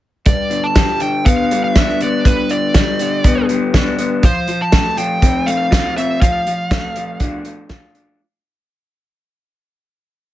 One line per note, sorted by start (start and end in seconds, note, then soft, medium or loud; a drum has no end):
0.26 1.51 G2 medium
0.26 0.65 D5 medium
0.26 kick loud
0.26 closed hi-hat medium
0.50 1.00 D3 medium
0.50 closed hi-hat soft
0.64 1.01 A5 loud
0.76 1.51 G3 medium
0.76 kick loud
0.76 snare loud
0.76 closed hi-hat medium
1.00 2.25 D3 medium
1.00 1.27 G5 medium
1.00 closed hi-hat medium
1.25 2.01 B3 medium
1.25 1.64 F5 medium
1.25 kick medium
1.25 closed hi-hat medium
1.51 2.75 G3 medium
1.51 closed hi-hat medium
1.64 2.02 E5 medium
1.76 3.00 D4 medium
1.76 kick loud
1.76 snare loud
1.76 closed hi-hat medium
2.01 3.25 B3 soft
2.01 2.27 D5 medium
2.01 closed hi-hat medium
2.25 3.50 G2 medium
2.25 2.52 B4 medium
2.25 kick medium
2.25 closed hi-hat medium
2.49 3.00 D3 medium
2.49 3.46 D5 medium
2.49 closed hi-hat soft
2.74 3.49 G3 medium
2.74 kick loud
2.74 snare loud
2.74 closed hi-hat medium
2.99 4.23 D3 medium
2.99 closed hi-hat medium
3.24 3.97 B3 medium
3.24 kick loud
3.24 closed hi-hat medium
3.49 4.24 G3 medium
3.49 closed hi-hat soft
3.74 4.24 D4 medium
3.74 kick loud
3.74 snare medium
3.74 closed hi-hat medium
3.99 4.24 B3 medium
3.99 closed hi-hat medium
4.23 4.48 F3 medium
4.23 4.63 C5 medium
4.23 kick loud
4.23 closed hi-hat medium
4.48 4.97 F3 medium
4.48 closed hi-hat soft
4.62 4.98 A5 medium
4.72 5.47 A3 medium
4.72 kick loud
4.72 snare loud
4.72 closed hi-hat medium
4.97 6.21 F3 medium
4.97 5.49 G5 loud
4.97 closed hi-hat medium
5.22 5.96 C4 medium
5.22 kick medium
5.22 closed hi-hat medium
5.46 6.71 A3 medium
5.46 5.93 F5 medium
5.46 closed hi-hat medium
5.71 7.69 F4 medium
5.71 kick medium
5.71 snare loud
5.71 closed hi-hat medium
5.97 6.22 C4 medium
5.97 6.21 E5 medium
5.97 closed hi-hat medium
6.21 6.46 F3 medium
6.21 7.66 F5 medium
6.21 kick medium
6.21 closed hi-hat medium
6.47 6.95 F3 medium
6.47 closed hi-hat soft
6.71 7.45 A3 medium
6.71 kick loud
6.71 snare loud
6.71 closed hi-hat medium
6.96 8.20 F3 medium
6.96 closed hi-hat medium
7.20 7.94 D4 medium
7.20 kick medium
7.20 closed hi-hat medium
7.45 8.20 A3 medium
7.45 closed hi-hat soft
7.69 8.20 F4 medium
7.69 kick loud
7.69 snare medium
7.69 closed hi-hat medium
7.95 8.20 D4 medium
7.95 closed hi-hat medium